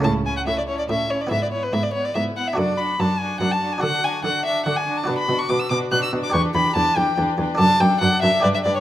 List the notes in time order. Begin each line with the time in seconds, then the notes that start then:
0.00 A2 A3 C#4 E4 A4 A5
0.05 A2 C#4 E4
0.25 C#4 E4 A4 G#5
0.37 F#5
0.46 A2 C#4 E4 A4 E5
0.58 D5
0.67 C#4 E4 A4 C#5
0.79 D5
0.89 A2 C#4 E4 A4 E5
1.10 C#4 E4 A4 C#5
1.21 D5
1.27 B3 E4
1.31 G#2 B3 B4 E5
1.43 D5
1.52 B3 E4 B4 C#5
1.63 B4
1.73 G#2 B3 E4 B4 E5
1.83 D5
1.93 B3 E4 B4 C#5
2.05 D5
2.15 G#2 B3 E4 B4 E5
2.36 B3 E4 B4 F#5
2.48 E5
2.53 F#2 D4 F#4 A4 D5
2.58 F#2 D4 F#4 A4
2.78 D4 F#4 A4 B5
2.99 F#2 D4 F#4 A4 A5
3.20 D4 F#4 A4 G#5
3.40 F#2 D4 F#4 A4 F#5
3.51 A5
3.62 D4 F#4 A4
3.73 G#5
3.78 D4 F#4 A4
3.82 D3 D4 F#4 A4 F#5
4.03 D4 F#4 A4 G#5
4.24 D3 D4 F#4 A4 F#5
4.45 D4 F#4 A4 E5
4.66 D3 D4 F#4 A4 F#5
4.77 G#5
4.87 D4 F#4 A4
4.98 A5
5.04 D4 F#4 B4
5.08 B2 D4 F#4 B4
5.18 B5
5.29 B2 D4 F#4 B4
5.39 C#6
5.49 B2 D4 F#4 B4 D6
5.60 E6
5.70 B2 D4 F#4 B4 D6
5.91 B2 D4 F#4 B4 F#6
6.03 E6
6.13 B2 D4 F#4 B4
6.23 D6
6.30 D4 G4 B4 C#6
6.34 E2 D4 G4 B4
6.54 E2 D4 G4 B4 B5
6.76 E2 D4 G4 B4 A5
6.97 E2 D4 G4 B4 G5
7.18 E2 D4 G4 B4
7.38 E2 D4 G4 B4
7.55 D4 A4 D5
7.59 F#2 D4 A4 D5 A5
7.80 F#2 D4 A4 D5 G5
8.00 F#2 D4 A4 D5 F#5
8.22 F#2 D4 A4 D5 E5
8.40 G2 D4 G4 B4 D5
8.45 G2 G4
8.54 E5
8.64 G2 D4 G4 B4 D5
8.76 C#5